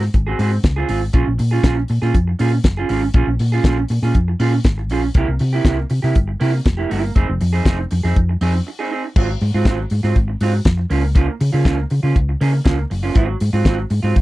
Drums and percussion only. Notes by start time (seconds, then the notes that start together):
0.02 snare
0.14 kick, closed hi-hat
0.39 open hi-hat
0.63 kick, snare, closed hi-hat
0.89 open hi-hat
1.13 kick, closed hi-hat
1.39 open hi-hat
1.64 kick, snare, closed hi-hat
1.88 open hi-hat
2.02 snare
2.14 kick, closed hi-hat
2.39 open hi-hat
2.64 kick, snare, closed hi-hat
2.89 open hi-hat
3.14 kick, closed hi-hat
3.39 open hi-hat
3.64 kick, snare, closed hi-hat
3.88 open hi-hat
4.02 snare
4.15 kick, closed hi-hat
4.40 open hi-hat
4.64 kick, snare, closed hi-hat
4.90 open hi-hat
5.14 kick, closed hi-hat
5.39 open hi-hat
5.65 kick, snare, closed hi-hat
5.90 open hi-hat
6.03 snare
6.15 kick, closed hi-hat
6.41 open hi-hat
6.66 kick, snare, closed hi-hat
6.91 open hi-hat
7.16 kick, closed hi-hat
7.41 open hi-hat
7.65 kick, snare, closed hi-hat
7.91 open hi-hat
8.04 snare
8.16 kick, closed hi-hat
8.41 open hi-hat
9.16 kick, crash
9.41 open hi-hat
9.65 kick, snare, closed hi-hat
9.90 open hi-hat
10.04 snare
10.16 kick, closed hi-hat
10.41 open hi-hat
10.65 kick, snare, closed hi-hat
10.90 open hi-hat
11.15 kick, closed hi-hat
11.41 open hi-hat
11.65 kick, snare, closed hi-hat
11.90 open hi-hat
12.16 kick, closed hi-hat
12.41 open hi-hat
12.65 kick, snare, closed hi-hat
12.91 open hi-hat
13.15 kick, closed hi-hat
13.40 open hi-hat
13.65 kick, snare, closed hi-hat
13.90 open hi-hat
14.16 kick, closed hi-hat